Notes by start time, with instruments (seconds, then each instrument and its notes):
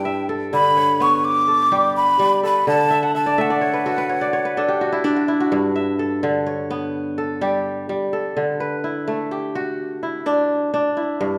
Already playing: kora G2 D4 E4, flute G5
0.05 kora E5
0.29 kora A4
0.53 kora D3, flute B5
0.77 kora C#5
1.00 kora B3, flute C#6
1.25 flute D6
1.48 kora A4
1.72 kora G3 G4
1.97 flute B5
2.19 kora G3
2.43 kora A4, flute B5
2.67 kora D3, flute A5
2.91 kora E5
3.03 kora F#5
3.15 kora E5, flute A5
3.26 kora D5
3.38 kora A3 E5, flute F#5
3.50 kora D5
3.61 kora C#5
3.74 kora B4
3.86 kora F#4 A4
3.98 kora B4
4.09 kora C#5
4.21 kora D5
4.33 kora C#5
4.45 kora B4
4.57 kora D4 A4
4.68 kora G4
4.81 kora F#4
4.92 kora E4
5.04 kora D4
5.16 kora F#4
5.28 kora E4
5.40 kora F#4
5.52 kora G2
5.76 kora E5
5.99 kora A4
6.23 kora D3
6.46 kora C#5
6.70 kora B3
7.18 kora A4
7.41 kora G3 G4
7.89 kora G3
8.13 kora A4
8.37 kora D3
8.60 kora B4
8.84 kora E4
9.08 kora A3
9.31 kora G4
9.55 kora F#4
10.03 kora E4
10.26 kora D4
10.74 kora D4
10.97 kora E4
11.21 kora G2